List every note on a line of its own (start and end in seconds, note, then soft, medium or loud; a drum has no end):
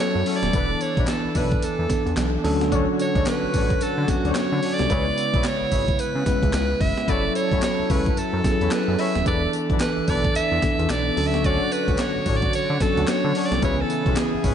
0.00 0.51 F#3 medium
0.00 0.55 F#3 medium
0.00 0.55 C#4 medium
0.00 0.51 E4 medium
0.00 0.55 E4 medium
0.00 0.54 A4 medium
0.00 2.40 A4 medium
0.00 0.38 C#5 loud
0.15 0.24 F#2 loud
0.26 0.41 A3 medium
0.26 0.41 C#4 medium
0.26 0.41 E4 medium
0.26 0.41 F#4 medium
0.26 0.41 A4 medium
0.26 open hi-hat medium
0.36 0.83 D5 loud
0.43 0.51 D#1 medium
0.43 snare medium
0.43 closed hi-hat medium
0.53 0.75 E1 loud
0.53 1.35 E3 medium
0.53 2.43 E3 medium
0.53 1.35 B3 medium
0.53 0.69 B3 loud
0.53 2.42 D4 medium
0.53 0.68 D4 loud
0.53 1.35 D4 medium
0.53 0.68 E4 medium
0.53 0.68 A4 loud
0.53 1.35 A4 medium
0.53 0.69 B4 loud
0.53 kick loud
0.53 closed hi-hat medium
0.53 tambourine medium
0.81 1.08 C#5 loud
0.81 closed hi-hat medium
0.81 tambourine medium
0.97 1.06 B1 medium
0.97 1.07 B3 medium
0.97 1.07 D4 medium
0.97 1.07 E4 medium
0.97 1.07 A4 medium
0.97 1.07 B4 medium
0.97 kick loud
0.97 closed hi-hat soft
1.07 1.38 A4 medium
1.07 snare loud
1.07 clap medium
1.07 closed hi-hat medium
1.07 tambourine medium
1.25 1.29 B1 soft
1.35 1.57 B1 medium
1.35 1.50 B3 medium
1.35 1.50 D4 medium
1.35 1.50 E4 medium
1.35 1.50 A4 medium
1.35 1.50 B4 medium
1.35 1.66 B4 medium
1.35 kick medium
1.35 open hi-hat medium
1.35 tambourine medium
1.51 kick medium
1.51 closed hi-hat medium
1.62 1.69 E2 soft
1.62 2.18 A4 medium
1.62 closed hi-hat medium
1.62 tambourine medium
1.79 1.87 E2 medium
1.89 2.44 E3 medium
1.89 2.44 B3 medium
1.89 2.43 D4 medium
1.89 2.44 A4 medium
1.89 kick loud
1.89 snare medium
1.89 closed hi-hat medium
1.89 tambourine medium
2.06 2.15 E2 medium
2.06 closed hi-hat soft
2.17 2.38 B1 loud
2.17 snare loud
2.17 clap medium
2.17 closed hi-hat medium
2.17 tambourine medium
2.44 2.87 D2 loud
2.44 4.88 D3 medium
2.44 3.33 F#3 medium
2.44 3.33 C#4 medium
2.44 3.33 D4 medium
2.44 4.88 F#4 medium
2.44 3.33 A4 loud
2.44 4.87 C#5 medium
2.44 open hi-hat medium
2.61 snare medium
2.61 closed hi-hat medium
2.71 2.87 C#4 loud
2.71 2.86 D4 loud
2.71 2.86 F#4 loud
2.71 2.86 A4 loud
2.71 2.87 C#5 loud
2.71 kick loud
2.71 closed hi-hat medium
2.71 tambourine medium
2.99 3.30 C#5 loud
2.99 closed hi-hat medium
2.99 tambourine medium
3.15 3.24 C#2 loud
3.15 3.25 C#4 medium
3.15 3.25 D4 medium
3.15 3.25 F#4 medium
3.15 3.25 A4 medium
3.15 3.25 C#5 medium
3.15 kick loud
3.15 closed hi-hat soft
3.26 3.84 B4 loud
3.26 snare loud
3.26 clap medium
3.26 closed hi-hat medium
3.26 tambourine medium
3.43 3.47 A1 soft
3.53 3.75 A1 loud
3.53 3.68 C#4 medium
3.53 3.68 D4 medium
3.53 3.68 F#4 medium
3.53 3.68 A4 medium
3.53 3.68 C#5 medium
3.53 kick medium
3.53 open hi-hat medium
3.53 tambourine medium
3.70 kick loud
3.70 closed hi-hat medium
3.81 3.88 D3 soft
3.81 4.12 A4 medium
3.81 closed hi-hat medium
3.81 tambourine medium
3.98 4.06 D3 medium
4.08 4.70 F#3 medium
4.08 4.70 C#4 medium
4.08 4.70 D4 medium
4.08 4.70 F#4 medium
4.08 4.33 F#4 medium
4.08 kick loud
4.08 snare medium
4.08 closed hi-hat medium
4.08 tambourine medium
4.25 4.33 D2 medium
4.25 4.34 C#4 medium
4.25 4.34 D4 medium
4.25 4.34 F#4 medium
4.25 4.34 A4 medium
4.25 4.34 C#5 medium
4.25 closed hi-hat medium
4.31 4.38 C5 medium
4.31 snare loud
4.31 clap medium
4.31 closed hi-hat medium
4.31 tambourine medium
4.37 4.75 C#5 loud
4.52 4.60 D3 loud
4.63 4.78 C#4 medium
4.63 4.77 D4 medium
4.63 4.77 F#4 medium
4.63 4.78 A4 medium
4.63 4.78 C#5 medium
4.63 open hi-hat medium
4.73 5.48 D5 loud
4.79 4.88 C2 medium
4.79 snare medium
4.79 closed hi-hat medium
4.89 5.11 C#2 loud
4.89 5.71 C#3 medium
4.89 7.06 C#3 medium
4.89 5.71 G#3 medium
4.89 7.06 B3 medium
4.89 5.05 C#4 loud
4.89 5.71 E4 medium
4.89 5.05 E4 loud
4.89 9.22 E4 medium
4.89 5.05 G#4 loud
4.89 5.05 B4 medium
4.89 5.71 B4 medium
4.89 5.05 C#5 loud
4.89 kick loud
4.89 closed hi-hat medium
4.89 tambourine medium
5.18 closed hi-hat medium
5.18 tambourine medium
5.34 5.42 B1 medium
5.34 5.44 C#4 medium
5.34 5.43 E4 medium
5.34 5.43 G#4 medium
5.34 5.43 B4 medium
5.34 5.44 C#5 medium
5.34 kick loud
5.34 closed hi-hat soft
5.44 6.01 C#5 medium
5.44 snare loud
5.44 clap medium
5.44 closed hi-hat medium
5.44 tambourine medium
5.61 5.65 G#1 soft
5.71 5.93 G#1 loud
5.71 5.86 C#4 medium
5.71 5.86 E4 medium
5.71 5.86 G#4 medium
5.71 5.86 B4 medium
5.71 5.86 C#5 medium
5.71 kick medium
5.71 open hi-hat medium
5.71 tambourine medium
5.88 kick loud
5.88 closed hi-hat medium
5.99 6.06 C#3 soft
5.99 6.54 B4 loud
5.99 closed hi-hat medium
5.99 tambourine medium
6.15 6.24 C#3 medium
6.26 6.88 G#3 medium
6.26 6.88 C#4 medium
6.26 6.88 E4 medium
6.26 6.89 B4 medium
6.26 kick loud
6.26 snare medium
6.26 closed hi-hat medium
6.26 tambourine medium
6.43 6.51 C#2 medium
6.43 kick medium
6.43 closed hi-hat medium
6.53 6.75 C#2 loud
6.53 6.82 B4 loud
6.53 snare loud
6.53 clap medium
6.53 closed hi-hat medium
6.53 tambourine medium
6.81 6.94 F#1 medium
6.81 7.11 E5 loud
6.81 kick loud
6.81 open hi-hat medium
6.97 snare medium
6.97 closed hi-hat medium
7.08 7.29 F#1 loud
7.08 7.89 F#3 medium
7.08 9.24 F#3 medium
7.08 7.89 C#4 medium
7.08 7.23 C#4 loud
7.08 7.23 E4 loud
7.08 7.89 E4 medium
7.08 7.23 F#4 medium
7.08 9.24 A4 medium
7.08 7.23 A4 medium
7.08 7.90 A4 medium
7.08 7.23 C#5 loud
7.08 7.35 D5 loud
7.08 kick loud
7.08 closed hi-hat medium
7.08 tambourine medium
7.35 7.61 C#5 loud
7.35 closed hi-hat medium
7.35 tambourine medium
7.51 7.60 A1 medium
7.51 7.61 C#4 medium
7.51 7.61 E4 medium
7.51 7.61 F#4 medium
7.51 7.61 A4 medium
7.51 7.61 C#5 medium
7.51 kick loud
7.51 closed hi-hat medium
7.62 7.92 C#5 loud
7.62 snare loud
7.62 clap medium
7.62 closed hi-hat medium
7.62 tambourine medium
7.79 7.83 C#2 soft
7.90 8.11 C#2 medium
7.90 8.05 C#4 medium
7.90 8.04 E4 medium
7.90 8.04 F#4 medium
7.90 8.05 A4 medium
7.90 8.20 B4 medium
7.90 8.05 C#5 medium
7.90 kick medium
7.90 open hi-hat medium
7.90 tambourine medium
8.06 kick medium
8.06 closed hi-hat medium
8.17 8.24 F#2 soft
8.17 8.74 A4 loud
8.17 closed hi-hat medium
8.17 tambourine medium
8.33 8.42 F#2 loud
8.44 9.06 F#3 medium
8.44 9.07 C#4 medium
8.44 9.07 E4 medium
8.44 8.53 G#4 medium
8.44 kick loud
8.44 snare medium
8.44 closed hi-hat medium
8.44 tambourine medium
8.52 9.10 A4 medium
8.61 8.69 E2 medium
8.61 8.71 C#4 medium
8.61 8.70 E4 medium
8.61 8.71 F#4 medium
8.61 8.71 A4 medium
8.61 8.71 C#5 medium
8.61 closed hi-hat soft
8.71 9.01 B4 loud
8.71 snare loud
8.71 clap medium
8.71 closed hi-hat medium
8.71 tambourine medium
8.88 8.97 F#2 loud
8.98 9.14 C#4 medium
8.98 9.13 E4 medium
8.98 9.13 F#4 medium
8.98 9.14 A4 medium
8.98 9.14 C#5 medium
8.98 9.27 E5 loud
8.98 open hi-hat medium
9.15 9.24 D#1 medium
9.15 snare medium
9.15 closed hi-hat medium
9.26 9.47 E1 loud
9.26 10.07 E3 medium
9.26 11.15 E3 medium
9.26 10.07 B3 medium
9.26 9.41 B3 loud
9.26 9.41 D4 loud
9.26 11.15 D4 medium
9.26 10.08 D4 medium
9.26 9.41 E4 medium
9.26 9.35 G#4 medium
9.26 9.41 A4 loud
9.26 11.15 A4 loud
9.26 9.41 B4 loud
9.26 9.52 D5 loud
9.26 kick loud
9.26 closed hi-hat medium
9.26 tambourine medium
9.34 10.11 A4 medium
9.53 closed hi-hat medium
9.53 tambourine medium
9.70 9.78 B1 medium
9.70 9.80 B3 medium
9.70 9.80 D4 medium
9.70 9.80 E4 medium
9.70 9.80 A4 medium
9.70 9.80 B4 medium
9.70 kick loud
9.70 closed hi-hat soft
9.80 10.11 B4 loud
9.80 snare loud
9.80 clap medium
9.80 closed hi-hat medium
9.80 tambourine medium
9.97 10.02 B1 medium
10.07 10.29 B1 medium
10.07 10.23 B3 medium
10.07 10.23 D4 medium
10.07 10.23 E4 medium
10.07 10.23 A4 medium
10.07 10.23 B4 medium
10.07 10.36 D5 medium
10.07 kick medium
10.07 open hi-hat medium
10.07 tambourine medium
10.24 kick medium
10.24 closed hi-hat medium
10.35 10.42 E2 medium
10.35 10.92 E5 loud
10.35 closed hi-hat medium
10.35 tambourine medium
10.51 10.60 E2 medium
10.62 11.17 E3 medium
10.62 11.17 B3 medium
10.62 11.16 D4 medium
10.62 11.17 A4 medium
10.62 kick loud
10.62 snare medium
10.62 closed hi-hat medium
10.62 tambourine medium
10.79 10.88 E2 medium
10.79 closed hi-hat soft
10.90 11.11 B1 medium
10.90 11.28 D5 loud
10.90 snare loud
10.90 clap medium
10.90 closed hi-hat medium
10.90 tambourine medium
11.16 11.60 D2 loud
11.16 13.60 D3 medium
11.16 12.05 F#3 medium
11.16 12.05 C#4 medium
11.16 12.06 D4 medium
11.16 13.60 F#4 medium
11.16 12.06 A4 loud
11.16 13.60 C#5 medium
11.16 open hi-hat medium
11.27 11.47 E5 loud
11.34 snare medium
11.34 closed hi-hat medium
11.44 11.59 C#4 loud
11.44 11.59 D4 loud
11.44 11.59 F#4 medium
11.44 11.59 A4 medium
11.44 11.59 C#5 loud
11.44 11.74 D5 loud
11.44 kick loud
11.44 closed hi-hat medium
11.44 tambourine medium
11.72 12.02 B4 loud
11.72 closed hi-hat medium
11.72 tambourine medium
11.88 11.96 C#2 medium
11.88 11.98 C#4 medium
11.88 11.98 D4 medium
11.88 11.98 F#4 medium
11.88 11.98 A4 medium
11.88 11.98 C#5 medium
11.88 kick loud
11.88 closed hi-hat soft
11.98 12.38 C#5 loud
11.98 snare loud
11.98 clap medium
11.98 closed hi-hat medium
11.98 tambourine medium
12.16 12.20 A1 soft
12.26 12.48 A1 loud
12.26 12.41 C#4 medium
12.26 12.41 D4 medium
12.26 12.41 F#4 medium
12.26 12.41 A4 medium
12.26 12.41 C#5 medium
12.26 kick medium
12.26 open hi-hat medium
12.26 tambourine medium
12.36 12.54 D5 loud
12.42 kick loud
12.42 closed hi-hat medium
12.53 12.60 D3 soft
12.53 12.83 C#5 loud
12.53 closed hi-hat medium
12.53 tambourine medium
12.70 12.78 D3 loud
12.80 13.43 F#3 medium
12.80 13.43 C#4 medium
12.80 13.43 D4 medium
12.80 13.11 A4 loud
12.80 13.43 A4 medium
12.80 kick loud
12.80 snare medium
12.80 closed hi-hat medium
12.80 tambourine medium
12.97 13.06 D2 loud
12.97 13.07 C#4 medium
12.97 13.07 D4 medium
12.97 13.07 F#4 medium
12.97 13.07 A4 medium
12.97 13.07 C#5 medium
12.97 closed hi-hat medium
13.07 13.47 C#5 loud
13.07 snare loud
13.07 clap medium
13.07 closed hi-hat medium
13.07 tambourine medium
13.24 13.33 D3 loud
13.35 13.50 C#4 medium
13.35 13.50 D4 medium
13.35 13.50 F#4 medium
13.35 13.50 A4 medium
13.35 13.50 C#5 medium
13.35 open hi-hat medium
13.45 13.63 D5 medium
13.52 13.60 C2 medium
13.52 snare medium
13.52 closed hi-hat medium
13.62 13.84 C#2 loud
13.62 14.54 C#3 medium
13.62 14.44 E3 medium
13.62 14.44 B3 medium
13.62 14.54 B3 medium
13.62 13.77 B3 loud
13.62 13.77 C#4 loud
13.62 14.44 C#4 medium
13.62 13.77 E4 medium
13.62 14.54 E4 medium
13.62 13.71 F#4 medium
13.62 13.77 G#4 loud
13.62 13.77 B4 loud
13.62 13.83 C#5 loud
13.62 kick loud
13.62 closed hi-hat medium
13.62 tambourine medium
13.70 14.47 G#5 medium
13.81 14.20 A4 medium
13.90 closed hi-hat medium
13.90 tambourine medium
14.06 14.15 B1 loud
14.06 14.16 B3 medium
14.06 14.16 C#4 medium
14.06 14.16 E4 medium
14.06 14.16 G#4 medium
14.06 14.16 B4 medium
14.06 kick loud
14.06 closed hi-hat soft
14.16 14.54 G#4 medium
14.16 snare loud
14.16 clap medium
14.16 closed hi-hat medium
14.16 tambourine loud
14.34 14.38 G#1 soft
14.44 14.54 G#1 loud
14.44 14.54 B3 medium
14.44 14.54 C#4 medium
14.44 14.54 E4 medium
14.44 14.54 G#4 medium
14.44 14.54 B4 medium
14.44 kick loud
14.44 open hi-hat medium
14.44 tambourine medium